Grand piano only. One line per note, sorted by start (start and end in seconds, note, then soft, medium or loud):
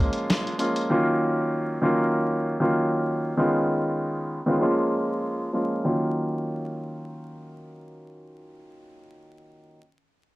0.00 0.52 F3 medium
0.00 0.53 G#3 medium
0.00 0.53 A#3 medium
0.00 0.53 C#4 medium
0.00 0.53 F4 loud
0.58 0.87 F3 medium
0.58 0.88 G#3 medium
0.58 0.88 A#3 medium
0.58 0.88 C#4 medium
0.58 0.88 F4 medium
0.90 1.76 D#3 medium
0.90 1.76 F#3 medium
0.90 1.77 A#3 medium
0.90 1.77 C#4 medium
0.90 1.77 F4 loud
1.82 2.54 D#3 medium
1.82 2.55 F#3 medium
1.82 2.55 A#3 medium
1.82 2.55 C#4 medium
1.82 2.55 F4 loud
2.60 3.31 D#3 medium
2.60 3.31 F#3 medium
2.60 3.32 A#3 medium
2.60 3.32 C#4 medium
2.60 3.32 F4 medium
3.37 4.38 D#3 medium
3.37 4.38 G#3 medium
3.37 4.38 B3 medium
3.37 4.38 C#4 medium
3.37 4.39 F4 loud
4.46 4.61 D#3 medium
4.46 4.60 G#3 medium
4.46 4.61 B3 medium
4.46 4.61 C#4 medium
4.46 4.61 F4 medium
4.61 5.47 F3 medium
4.61 5.47 G#3 medium
4.61 5.48 A#3 medium
4.61 5.48 C#4 medium
4.61 5.48 F4 loud
5.53 5.82 F3 medium
5.53 5.82 G#3 medium
5.53 5.83 A#3 medium
5.53 5.83 C#4 medium
5.53 5.83 F4 medium
5.85 9.78 D#3 medium
5.85 9.78 F#3 medium
5.85 9.79 A#3 medium
5.85 9.79 C#4 medium
5.85 9.79 F4 medium